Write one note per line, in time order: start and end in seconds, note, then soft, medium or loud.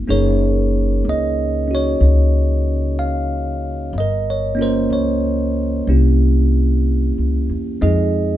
0.00 0.11 A3 soft
0.00 0.10 B3 soft
0.00 0.11 D4 soft
0.00 0.10 F4 soft
0.08 1.01 F#1 medium
0.08 3.94 A#3 soft
0.08 1.67 C#4 soft
0.08 3.95 D#4 soft
0.08 3.95 G#4 soft
0.08 1.02 C#5 medium
0.12 1.99 A#4 soft
1.05 1.97 C#2 medium
1.09 1.73 D#5 medium
1.68 3.94 C#4 soft
1.68 3.95 F#4 soft
1.75 2.64 C#5 medium
2.00 3.90 C#2 medium
2.99 3.91 F5 medium
3.93 4.87 G1 medium
3.98 4.60 A#4 soft
3.98 4.30 D#5 medium
4.30 4.62 C#5 medium
4.55 5.86 A#3 soft
4.55 5.87 C#4 soft
4.59 5.88 F4 soft
4.59 5.90 A#4 soft
4.59 4.94 C5 medium
4.90 5.84 C#2 medium
4.90 5.85 C#5 medium
5.87 7.13 C2 medium
5.87 7.82 A#3 soft
5.87 7.82 C#4 soft
5.87 7.83 E4 soft
5.87 7.83 G4 soft
7.18 7.48 C#2 soft
7.50 7.80 E2 soft
7.81 8.37 F2 medium
7.81 8.37 G#3 soft
7.81 8.37 C4 soft
7.81 8.37 D#4 soft
7.81 8.37 F4 soft
7.81 8.37 G#4 soft
7.81 8.37 D#5 medium